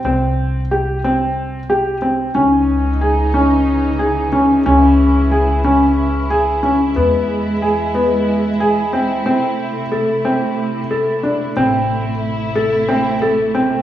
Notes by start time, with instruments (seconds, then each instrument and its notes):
0.04 upright bass C2, felt piano C4
0.71 felt piano G4
1.04 felt piano C4
1.70 felt piano G4
2.02 felt piano C4
2.34 upright bass C#2, string section C#3 E3 D#4, felt piano C#4
3.01 felt piano G#4
3.34 felt piano C#4
3.99 felt piano G#4
4.33 felt piano C#4
4.65 upright bass C#2, felt piano C#4, string section E4
5.31 felt piano G#4
5.64 felt piano C#4
6.30 felt piano G#4
6.63 felt piano C#4
6.96 upright bass E2, string section G#3, felt piano B3
7.62 felt piano G#4
7.95 felt piano B3
8.60 felt piano G#4
8.93 felt piano C4
9.26 string section C3 A3, felt piano C4
9.92 felt piano A4
10.25 felt piano C4
10.91 felt piano A4
11.23 felt piano D4
11.56 upright bass A1, string section C3 A3 E4, felt piano C4
12.55 felt piano A4
12.88 felt piano C4
13.22 felt piano A4
13.55 felt piano C4